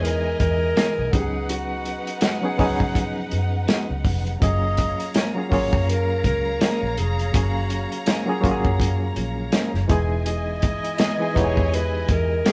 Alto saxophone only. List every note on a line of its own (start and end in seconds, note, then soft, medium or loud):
0.03 0.39 A#4 loud
0.40 1.14 A#4 loud
1.13 1.51 G#4 loud
1.50 2.23 F#4 medium
4.43 5.11 D#5 loud
5.53 5.91 C#5 loud
5.90 6.25 A#4 loud
6.26 6.59 A#4 loud
6.63 7.00 A#4 medium
6.98 7.36 G#4 medium
7.35 8.07 F#4 medium
10.27 11.39 D#5 loud
11.38 11.76 C#5 loud
11.75 12.12 B4 loud
12.11 12.47 A#4 loud
12.48 12.52 G#4 medium